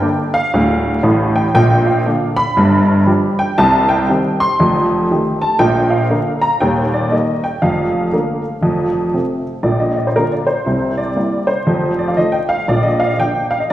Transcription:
Already playing: G5
0.02 D3 A#3 D4
0.34 F5
0.54 D1 D2
1.03 A1 A2
1.36 G5
1.55 A#1 A#2 G5
1.86 F5
2.06 D3 A#3 D4
2.36 B5
2.57 G1 G2
3.06 F3 D4 G4
3.39 G5
3.58 C2 C3 A5
3.89 G5
4.09 D#3 C4 G4
4.40 C6
4.60 F1 F2
5.11 D#3 A3 G4
5.41 A5
5.59 A#1 A#2 G5
5.90 F5
6.10 D3 A#3 A#4
6.42 A#5
6.60 D#1 D#2 G5
6.94 D5
7.11 D#3 A#3 A#4 D#5
7.44 G5
7.62 F1 F2 F5
8.13 D3 A#3 A#4
8.61 F1 F2
9.13 C3 C4 A4
9.63 A#1 A#2 D5
9.80 D#5
9.97 D5
10.07 C5
10.16 D3 A#3 F4 A#4
10.32 D5
10.47 C5
10.66 C2 C3
10.98 D5
11.16 G3 A#3 E4
11.47 C5
11.67 F1 F2
11.99 D5
12.08 F5
12.17 F3 A3 D#4 D#5
12.32 G5
12.49 F5
12.68 A#1 A#2 D5
12.83 D#5
13.00 F5
13.20 F3 A#3 D4 G5
13.51 F5
13.60 D#5

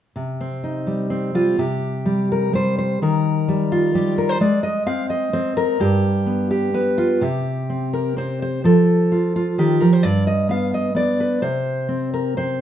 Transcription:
0.16 C3
0.41 C4
0.64 D#4
0.87 G3
1.10 C4
1.35 G3 F4
1.58 C3 G4
2.06 G3
2.32 A#4
2.53 G3 C5
2.79 C5
3.02 D#3 A#4
3.48 G3
3.72 F4
3.95 G3 G4
4.18 A#4
4.29 C5
4.41 G#3 D5
4.63 D#5
4.86 C4 F5
5.10 D#5
5.33 C4 C5
5.57 A#4
5.80 G2 G4
6.26 B3
6.51 G4
6.74 B3 B4
6.98 F4
7.21 C3 G4
7.70 C4
7.93 A#4
8.17 C4 C5
8.42 C5
8.64 F3 A4
9.12 F4
9.36 F4
9.58 D#3 G4
9.81 F3 A#4
9.93 C5
10.03 G2 D5
10.27 D#5
10.49 B3 F5
10.74 D#5
10.95 B3 D5
11.20 B4
11.42 C3 C5
11.89 C4
12.14 A#4
12.37 C4 C5

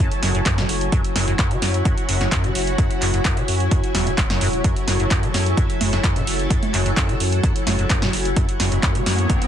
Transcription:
Already playing: F#3 E4 F#4 A4 C#5 G#5
0.11 closed hi-hat
0.23 F#1 F#2, snare, open hi-hat
0.35 F#2, closed hi-hat
0.46 F#2, kick, clap, closed hi-hat
0.58 C#3, snare, closed hi-hat
0.69 F#1, open hi-hat
0.81 closed hi-hat
0.92 F#2 F#4, kick, closed hi-hat
1.04 closed hi-hat
1.16 F#1 F#2, snare, open hi-hat
1.28 F#2, closed hi-hat
1.39 F#2, kick, clap, closed hi-hat
1.51 C#3, closed hi-hat
1.62 F#2, snare, open hi-hat
1.74 closed hi-hat
1.85 F#2, kick, closed hi-hat
1.98 closed hi-hat
2.09 F#1 F#2, open hi-hat
2.21 F#2, snare, closed hi-hat
2.32 F#2, kick, clap, closed hi-hat
2.44 C#3, closed hi-hat
2.55 F#1, open hi-hat
2.67 closed hi-hat
2.78 F#2, kick, closed hi-hat
2.91 closed hi-hat
3.02 F#1 F#2, clap, open hi-hat
3.14 F#2, closed hi-hat
3.25 F#2, kick, clap, closed hi-hat
3.37 C#3, closed hi-hat
3.48 F#2, open hi-hat
3.60 closed hi-hat
3.71 F#2, kick, closed hi-hat
3.84 closed hi-hat
3.95 E1 E2, snare, open hi-hat
4.07 F#3, closed hi-hat
4.18 F#1 F#3, kick, clap, closed hi-hat
4.30 F#2, snare, closed hi-hat
4.41 E1 F#2, open hi-hat
4.53 closed hi-hat
4.64 F#2 A4, kick, closed hi-hat
4.76 closed hi-hat
4.88 F#1 F#2, snare, open hi-hat
5.00 F#2, closed hi-hat
5.11 F#2, kick, clap, closed hi-hat
5.23 C#3, closed hi-hat
5.34 F#2, snare, open hi-hat
5.46 closed hi-hat
5.57 F#2, kick, closed hi-hat
5.70 closed hi-hat
5.81 F#1 F#2, open hi-hat, low conga
5.93 F#2, snare, closed hi-hat
6.04 F#2, kick, clap, closed hi-hat
6.16 C#3, closed hi-hat
6.27 F#1, open hi-hat
6.39 closed hi-hat
6.50 F#2, kick, closed hi-hat
6.63 closed hi-hat, low conga
6.74 F#1 F#2, clap, open hi-hat
6.86 F#2, closed hi-hat
6.97 F#2, kick, clap, closed hi-hat
7.09 C#3, closed hi-hat
7.20 F#2, open hi-hat
7.32 closed hi-hat
7.43 F#2, kick, closed hi-hat
7.56 closed hi-hat
7.67 F#1 F#2, snare, open hi-hat, low conga
7.79 F#2, closed hi-hat
7.90 F#2, kick, clap, closed hi-hat
8.02 C#3, snare, closed hi-hat
8.13 F#1, open hi-hat
8.25 closed hi-hat
8.36 F#2 C#5, kick, closed hi-hat, riser
8.49 closed hi-hat
8.60 F#1 F#2, snare, open hi-hat
8.72 F#2, closed hi-hat
8.83 F#2, kick, clap, closed hi-hat
8.95 C#3, closed hi-hat
9.06 F#2, snare, open hi-hat
9.18 closed hi-hat
9.30 F#2, kick, closed hi-hat
9.42 closed hi-hat

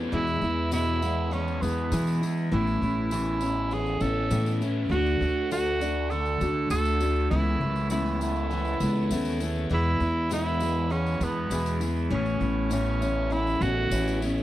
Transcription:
Already playing: E3 A3 B3 C#4 E4 F4
0.00 G4 A4
0.05 B4 C5
0.11 E2 B2 E3 G#3 B3 E4 D5
0.27 tambourine
0.41 E2 E3 G#3 B3 E4, tambourine
0.71 E2 B2 E3 G#3 B3 E4, tambourine
1.02 E3 G#3 B3 E4, tambourine
1.31 E3 G#3 B3 C#4 E4, tambourine
1.48 tambourine
1.62 E2 E3 G#3 B3 E4, tambourine
1.92 E2 B2 E3 G#3 B3 E4, tambourine
2.07 tambourine
2.21 E3 G#3 B3 E4, tambourine
2.37 tambourine
2.51 A1 A2 E3 A3 B3 C#4 E4
2.67 tambourine
2.81 A1 B3 C#4 E4, tambourine
3.11 A2 E3 B3 C#4 E4, tambourine
3.26 tambourine
3.41 B3 C#4 E4, tambourine
3.71 E3 B3 C#4 E4 G#4, tambourine
3.86 tambourine
4.01 A1 B3 C#4 E4 A4, tambourine
4.30 A2 E3 B3 C#4 E4, tambourine
4.46 tambourine
4.61 B3 C#4 E4, tambourine
4.89 D2 D3 A3 D4 F#4
5.06 tambourine
5.20 D2 A3 D4 F#4, tambourine
5.51 D3 A3 D4 F#4, tambourine
5.66 tambourine
5.80 A3 D4 F#4, tambourine
6.10 D3 A3 D4 F#4 A4, tambourine
6.25 tambourine
6.41 D2 A3 D4 F#4, tambourine
6.70 D2 D3 A3 D4 F#4 A4, tambourine
6.85 tambourine
7.00 A3 D4 F#4, tambourine
7.16 tambourine
7.30 C#2 C#3 E3 A3 B3 C#4 E4 A4
7.61 C#2 A3 B3 E4
7.76 tambourine
7.90 C#3 E3 A3 B3 E4, tambourine
8.06 tambourine
8.21 A3 B3 E4, tambourine
8.36 tambourine
8.51 E3 A3 B3 E4, tambourine
8.65 tambourine
8.80 C#2 A3 B3 E4, tambourine
8.95 tambourine
9.10 D#2 C#3 A3 B3 E4, tambourine
9.25 tambourine
9.40 A3 B3 E4, tambourine
9.56 tambourine
9.69 E2 B2 E3 G#3 B3 E4 G#4
9.74 E4
10.00 E2 E3 G#3 B3 E4, tambourine
10.30 E2 B2 E3 G#3 B3 E4, tambourine
10.46 tambourine
10.60 E3 G#3 B3 E4, tambourine
10.90 E3 G#3 B3 C#4 E4, tambourine
11.06 tambourine
11.20 E2 E3 G#3 B3 E4, tambourine
11.50 E2 B2 E3 G#3 B3 E4, tambourine
11.66 tambourine
11.80 E3 G#3 B3 E4, tambourine
11.96 tambourine
12.10 A1 A2 E3 B3 C#4 E4 A4
12.26 tambourine
12.40 A1 B3 C#4 E4, tambourine
12.70 A2 E3 B3 C#4 E4, tambourine
12.86 tambourine
13.01 B3 C#4 E4, tambourine
13.30 E3 B3 C#4 E4, tambourine
13.47 tambourine
13.61 A1 B3 C#4 E4 F#4, tambourine
13.91 A1 A2 E3 B3 C#4 E4, tambourine
14.08 tambourine
14.22 B3 C#4 E4, tambourine
14.37 tambourine

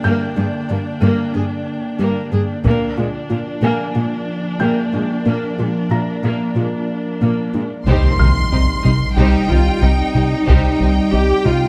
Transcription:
Already playing: D3 A#3 D4 D5 G5 F6
0.04 G2 G3 A#3 G6
0.37 G2 D4 G#4
0.69 G2 A#3 D4
1.02 G2 G3 A#3
1.34 G2 D4 G#4
1.99 G2 G3 A#3
2.32 G2 A#3 G#4
2.64 A#2 F3 A#3 D4 A#4 D5, taiko
2.97 A#2 G#3 F4
3.30 A#2 A#3 F4
3.63 A#2 A#3 G#5
3.95 A#2 G#3 F4
4.60 A#2 A#3 G5 G6
4.93 A#2 G#3 D4
5.26 A#2 A#3
5.58 A#2 G#3 F4
5.91 A#2 A#3 F4 A#5 A#6
6.23 A#2 A#3
6.56 A#2 G#3 F4
7.21 A#2 A#3
7.54 A#2 G#3 D4
7.86 C2 C3 G3 C4 D#4 G4 C5 D#5 C6, taiko, impact
8.19 C2 D#3 G3 C4 D#4 F6
8.52 C2 G3 C4 D#4 G4
8.83 C2 C3 G3 C4 D#4
9.17 C2 C3 G3 D#4 G4 C5 G5
9.50 C2 D#3 G3 C4 D#4 F4
9.82 C2 G3 C4 D#4 G4
10.15 C2 C3 G3 C4 D#4
10.47 C2 C3 G3 D#4 G4 C5 G5, taiko
10.80 C2 D#3 G3 C4 D#4
11.13 C2 G3 C4 D#4 G4
11.45 C2 C3 G3 C4 D#4 F4

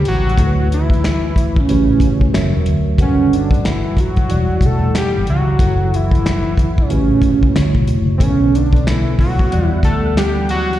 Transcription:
Already playing: C#3 G3 E4 B4 C#5
0.05 A1 F#4, closed hi-hat
0.29 closed hi-hat
0.36 D2 D3 A3 E4 F#4 A4, kick, closed hi-hat
0.46 B4
0.72 E4, closed hi-hat
0.90 kick, closed hi-hat
1.04 finger snap, snare, closed hi-hat
1.36 kick, closed hi-hat
1.56 C#4, kick
1.68 A1 A3 E4 F#4 G4 B4 C#5, closed hi-hat
1.91 muted fingered electric bass stroke
2.00 G1, kick, closed hi-hat
2.21 kick
2.33 F#1 F#3 F#4 A#4 C#5 E5, finger snap, snare, closed hi-hat
2.56 E1
2.66 D2, closed hi-hat
2.98 G1 G3 F#4 A4 B4 F#5, kick, closed hi-hat
3.02 C#4
3.33 D4, closed hi-hat
3.51 kick, closed hi-hat
3.65 E4, finger snap, snare, closed hi-hat
3.97 F#4, kick, closed hi-hat
4.16 kick, closed hi-hat
4.28 E1 E3 E4 F#4 D5 F#5, closed hi-hat
4.36 G3
4.52 muted fingered electric bass stroke
4.61 E1, kick, closed hi-hat
4.66 A4
4.95 G4, finger snap, snare, closed hi-hat
5.18 G1
5.27 C#2 F#4, closed hi-hat
5.58 F#1 F#3 E4 A4 C#5 F#5, kick, closed hi-hat
5.94 E4, closed hi-hat
6.11 kick, closed hi-hat
6.26 finger snap, snare, closed hi-hat
6.57 kick, closed hi-hat
6.78 C#4, kick
6.90 A1 A3 E4 F#4 G4 B4 C#5, closed hi-hat
7.13 muted fingered electric bass stroke
7.22 G1, kick, closed hi-hat
7.43 kick
7.55 D2 D3 A3 E4 F4 C#5, finger snap, snare, closed hi-hat
7.63 F#4
7.75 B1, kick
7.88 F#1, closed hi-hat
8.18 B1 B2 D3 A3 B3 C4, kick, closed hi-hat
8.22 C#4 A4 B4
8.29 C#5
8.55 D4, closed hi-hat
8.73 kick, closed hi-hat
8.87 E4, finger snap, snare, closed hi-hat
9.19 F#4, kick, open hi-hat
9.39 kick
9.50 E3 G3 B3 D5 F#5, closed hi-hat
9.54 E2
9.66 E4
9.74 muted fingered electric bass stroke
9.83 D2 A4, kick, closed hi-hat
10.17 G4, finger snap, snare, closed hi-hat
10.49 F#4, closed hi-hat
10.73 closed hi-hat

